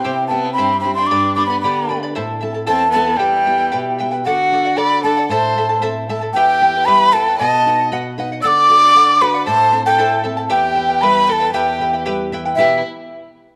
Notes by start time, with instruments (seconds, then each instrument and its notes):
Already playing: violin C4, quena G5
0.04 nylon-string guitar C3, charango E4 G4 C5 E5 G5
0.27 violin B3, nylon-string guitar C4, charango E4 C5 E5 G5, quena A5
0.32 nylon-string guitar E4 G4
0.45 charango E4 C5 G5
0.53 violin C4, quena B5
0.58 nylon-string guitar G2, charango E4 G4 C5 E5 G5
0.81 violin C4, nylon-string guitar C4, charango C5 E5, quena B5
0.85 charango E4 G5, nylon-string guitar E4 G4
0.95 violin D4, charango C5 G5, quena C6
0.99 charango E4
1.07 violin D4, quena D6
1.11 nylon-string guitar G2, charango G4 B4 D5 G5 B5
1.35 nylon-string guitar B3 D4 G4, violin D4, charango B4 D5 G5 B5, quena D6
1.46 violin B3, quena B5, charango B5
1.51 charango B4 D5
1.61 nylon-string guitar D3, violin B3, charango G4 B4 D5 G5, quena B5
1.65 charango B5
1.89 nylon-string guitar B3 D4 G4, charango B4 D5 G5 B5
2.03 charango B4 D5 B5
2.15 nylon-string guitar A2, charango E4 A4 C5 E5 A5
2.41 nylon-string guitar C4 E4 A4, charango E4 A4 E5 A5
2.54 charango E4 A4 A5
2.67 nylon-string guitar E2, violin C4, charango E4 A4 C5 E5 A5, quena A5
2.91 violin B3, charango E4 A4 E5 A5, quena A5
2.95 nylon-string guitar C4 E4 A4
3.06 charango E4 A4 A5
3.17 nylon-string guitar E2, violin G3, charango E4 G4 B4 E5 G5, quena G5
3.46 nylon-string guitar B3 E4 G4, charango E4 B4 E5 G5
3.58 charango E4 B4 G5
3.72 nylon-string guitar B2, charango E4 G4 B4 E5 G5
3.99 nylon-string guitar B3 E4 G4, charango E4 B4 E5 G5
4.11 charango E4 B4 G5
4.25 nylon-string guitar D3, violin F#4, charango A4 D5 F#5, quena F#5
4.52 nylon-string guitar D4, charango A4 D5 F#5
4.65 charango D5 F#5
4.77 nylon-string guitar F#4, charango A4 D5 F#5, violin D5, quena B5
5.03 nylon-string guitar D4, charango A4 D5 F#5, violin A4, quena A5
5.17 charango D5 F#5
5.29 nylon-string guitar A2, charango E4 A4 C5 E5 A5, violin C5, quena A5
5.55 nylon-string guitar A3, charango E4 A4 E5 A5
5.69 charango E4 A4 A5
5.82 nylon-string guitar C4, charango E4 A4 C5 E5 A5
6.09 nylon-string guitar A3, charango E4 A4 E5 A5
6.21 charango E4 A4 A5
6.33 nylon-string guitar E2, charango E4 G4 B4 E5 G5, violin G4, quena G5
6.61 nylon-string guitar E3, charango E4 B4 E5 G5
6.76 charango E4 B4 G5
6.85 nylon-string guitar G3, charango E4 G4 B4 E5 G5, violin B4, quena B5
7.13 nylon-string guitar E3, charango E4 B4 E5 G5, violin A4, quena A5
7.28 charango E4 B4 G5
7.39 nylon-string guitar B2, charango B4 D#5 F#5, violin D#5, quena A5
7.66 nylon-string guitar D#4, charango B4 D#5 F#5
7.79 charango D#5 F#5
7.92 nylon-string guitar F#4, charango B4 D#5 F#5
8.18 nylon-string guitar D#4, charango B4 D#5 F#5
8.32 charango D#5 F#5
8.42 nylon-string guitar D3, charango A4 D5 F#5, violin D5, quena E6
8.47 quena D6
8.69 nylon-string guitar F#4, charango A4 D5 F#5
8.84 charango D5 F#5
8.95 nylon-string guitar A4, charango A4 D5 F#5
9.20 nylon-string guitar F#4, charango A4 D5 F#5, violin B4, quena B5
9.34 charango D5 F#5
9.46 nylon-string guitar A2, charango E4 A4 C5 E5 A5, violin C5, quena A5
9.72 nylon-string guitar C4, charango E4 A4 E5 A5
9.86 charango E4 A4 A5, violin A4, quena G5
9.98 nylon-string guitar E4, charango E4 A4 C5 E5 A5
10.24 nylon-string guitar C4, charango E4 A4 E5 A5
10.37 charango E4 A4 A5
10.50 nylon-string guitar E2, charango E4 G4 B4 E5 G5, violin G4, quena G5
10.75 nylon-string guitar E3, charango E4 B4 E5 G5
10.89 charango E4 B4 G5
11.01 nylon-string guitar G3, charango E4 G4 B4 E5 G5, violin B4, quena B5
11.27 nylon-string guitar E3, charango E4 B4 E5 G5, violin A4, quena B5
11.32 quena A5
11.40 charango E4 B4 G5
11.54 nylon-string guitar E2, charango E4 G4 B4 E5 G5, violin G4, quena G5
11.80 nylon-string guitar E3, charango E4 B4 E5 G5
11.93 charango E4 B4 G5
12.06 nylon-string guitar G3, charango E4 G4 B4 E5 G5
12.32 nylon-string guitar E3, charango E4 B4 E5 G5
12.45 charango E4 B4 G5
12.56 nylon-string guitar E2 B2 E3 B3 G4 B4, violin E4, charango E4 G4 E5, quena E5
12.60 charango B4 G5